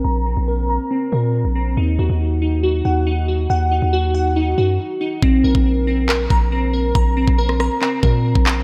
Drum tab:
CP |----------------|----------------|----------------|--------x-------|
SD |----------------|----------------|----------------|----------------|
BD |----------------|----------------|----------------|o--o------o-----|

CP |--------x-----x-|
SD |-----rr---------|
BD |o--o------o--o--|